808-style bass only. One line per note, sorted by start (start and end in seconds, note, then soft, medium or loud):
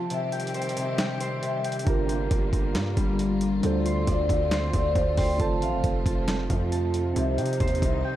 1.87 2.29 G1 loud
2.31 2.52 G1 loud
2.53 2.76 G1 loud
2.75 2.96 G2 loud
2.97 3.61 G1 loud
3.63 4.06 D2 loud
4.07 4.29 D2 loud
4.29 4.72 D2 loud
4.73 4.95 D2 loud
4.95 5.17 D2 loud
5.18 5.39 D2 loud
5.40 5.63 F1 loud
5.62 5.75 A1 loud
5.73 5.83 F1 loud
5.84 6.05 F1 loud
6.06 6.48 F1 loud
6.50 7.13 F2 loud
7.16 7.40 C2 loud
7.38 7.59 C3 loud
7.60 7.81 D#2 loud
7.82 8.03 C2 loud